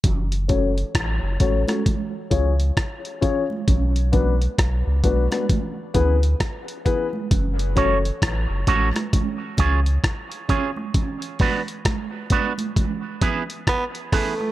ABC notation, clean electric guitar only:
X:1
M:4/4
L:1/8
Q:"Swing 16ths" 1/4=66
K:F#m
V:1 name="Clean electric guitar"
z8 | z8 | z [CFAc] z [CFAc] z [C^EGc] z [CEGc] | z [B,DFB] z [B,DFB] z [B,EGB] z [B,EGB] |]